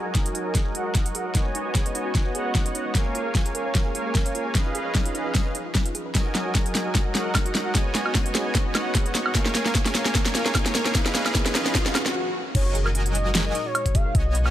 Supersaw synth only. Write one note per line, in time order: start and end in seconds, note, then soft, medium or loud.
0.00 0.73 F#3 medium
0.00 0.73 F#4 medium
0.00 0.73 A#4 medium
0.00 0.73 D#5 medium
0.00 0.73 G#5 loud
0.75 1.33 F#3 medium
0.75 1.33 F#4 medium
0.75 1.33 A#4 medium
0.75 1.33 D#5 medium
0.75 1.33 F#5 medium
1.35 2.33 B3 loud
1.35 2.33 F#4 medium
1.35 2.33 C#5 medium
1.35 2.33 D#5 medium
1.35 2.33 G#5 loud
2.35 2.93 B3 medium
2.35 2.93 F#4 medium
2.35 2.93 C#5 medium
2.35 2.93 D#5 medium
2.35 2.93 F#5 medium
2.95 3.93 A#3 loud
2.95 3.93 A#4 medium
2.95 3.93 C#5 medium
2.95 3.93 F5 medium
2.95 3.93 G#5 loud
3.95 4.53 A#3 medium
3.95 4.53 A#4 medium
3.95 4.53 C#5 medium
3.95 4.53 F5 medium
3.95 4.53 G#5 medium
4.55 5.53 C#4 loud
4.55 5.53 G#4 medium
4.55 5.53 B4 medium
4.55 5.53 D#5 medium
4.55 5.53 F5 loud
6.15 7.13 F#3 loud
6.15 7.13 F#4 medium
6.15 7.13 A#4 medium
6.15 7.13 D#5 medium
6.15 7.13 G#5 loud
7.15 7.73 F#3 medium
7.15 7.73 F#4 medium
7.15 7.73 A#4 medium
7.15 7.73 D#5 medium
7.15 7.73 F#5 medium
7.75 8.73 B3 loud
7.75 8.73 F#4 medium
7.75 8.73 C#5 medium
7.75 8.73 D#5 medium
7.75 8.73 G#5 loud
8.75 9.33 B3 medium
8.75 9.33 F#4 medium
8.75 9.33 C#5 medium
8.75 9.33 D#5 medium
8.75 9.33 F#5 medium
9.35 10.33 A#3 loud
9.35 10.33 A#4 medium
9.35 10.33 C#5 medium
9.35 10.33 F5 medium
9.35 10.33 G#5 loud
10.35 10.93 A#3 medium
10.35 10.93 A#4 medium
10.35 10.93 C#5 medium
10.35 10.93 F5 medium
10.35 10.93 G#5 medium
10.95 11.93 C#4 loud
10.95 11.93 G#4 medium
10.95 11.93 B4 medium
10.95 11.93 D#5 medium
10.95 11.93 F5 loud
12.55 13.53 F#3 loud
12.55 13.53 F#4 medium
12.55 13.53 A#4 medium
12.55 13.53 D#5 medium
12.55 13.53 G#5 loud
14.15 14.50 B3 loud
14.15 14.50 F#4 medium
14.15 14.50 C#5 medium
14.15 14.50 D#5 medium
14.15 14.50 G#5 loud